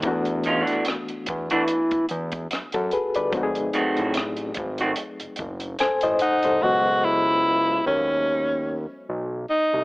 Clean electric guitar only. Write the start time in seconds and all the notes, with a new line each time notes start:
0.46 D#3 G#3 C#4 F4
0.61 E3 A3 D4 F#4
1.51 E3 A3 D4 F#4
3.74 D#3 A3 C4 F#4
4.81 D#3 A3 C4 F#4